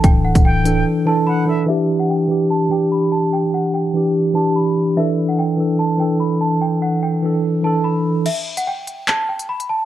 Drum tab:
CC |----------------|----------------|----------------|----------------|
HH |x--x--x---------|----------------|----------------|----------------|
CP |----------------|----------------|----------------|----------------|
BD |o--o------------|----------------|----------------|----------------|

CC |----------------|x---------------|
HH |----------------|x--x--x-x--x-x--|
CP |----------------|--------x-------|
BD |----------------|----------------|